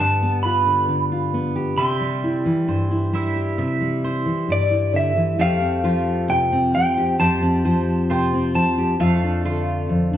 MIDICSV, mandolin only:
0, 0, Header, 1, 2, 480
1, 0, Start_track
1, 0, Tempo, 900901
1, 956, Time_signature, 4, 2, 24, 8
1, 5419, End_track
2, 0, Start_track
2, 0, Title_t, "Mandolin"
2, 0, Program_c, 0, 25
2, 0, Note_on_c, 0, 59, 65
2, 236, Note_on_c, 0, 71, 50
2, 949, Note_off_c, 0, 59, 0
2, 952, Note_on_c, 0, 55, 73
2, 955, Note_on_c, 0, 76, 57
2, 1004, Note_off_c, 0, 71, 0
2, 1431, Note_on_c, 0, 72, 51
2, 1668, Note_off_c, 0, 72, 0
2, 1671, Note_off_c, 0, 76, 0
2, 1671, Note_on_c, 0, 64, 51
2, 1674, Note_on_c, 0, 72, 46
2, 1677, Note_on_c, 0, 76, 51
2, 1905, Note_off_c, 0, 76, 0
2, 1912, Note_on_c, 0, 76, 56
2, 2147, Note_off_c, 0, 72, 0
2, 2154, Note_on_c, 0, 72, 51
2, 2872, Note_off_c, 0, 55, 0
2, 2874, Note_on_c, 0, 57, 74
2, 2875, Note_off_c, 0, 76, 0
2, 2877, Note_on_c, 0, 79, 64
2, 2920, Note_off_c, 0, 64, 0
2, 2922, Note_off_c, 0, 72, 0
2, 3114, Note_on_c, 0, 65, 54
2, 3832, Note_off_c, 0, 65, 0
2, 3833, Note_off_c, 0, 79, 0
2, 3834, Note_on_c, 0, 65, 52
2, 3837, Note_on_c, 0, 72, 51
2, 3842, Note_on_c, 0, 79, 55
2, 4068, Note_off_c, 0, 72, 0
2, 4075, Note_on_c, 0, 72, 52
2, 4308, Note_off_c, 0, 65, 0
2, 4311, Note_off_c, 0, 72, 0
2, 4314, Note_on_c, 0, 65, 61
2, 4315, Note_off_c, 0, 79, 0
2, 4317, Note_on_c, 0, 72, 59
2, 4321, Note_on_c, 0, 79, 66
2, 4789, Note_off_c, 0, 57, 0
2, 4795, Note_on_c, 0, 57, 81
2, 4796, Note_off_c, 0, 79, 0
2, 4799, Note_on_c, 0, 77, 66
2, 4841, Note_off_c, 0, 65, 0
2, 4843, Note_off_c, 0, 72, 0
2, 5037, Note_on_c, 0, 65, 56
2, 5419, Note_off_c, 0, 57, 0
2, 5419, Note_off_c, 0, 65, 0
2, 5419, Note_off_c, 0, 77, 0
2, 5419, End_track
0, 0, End_of_file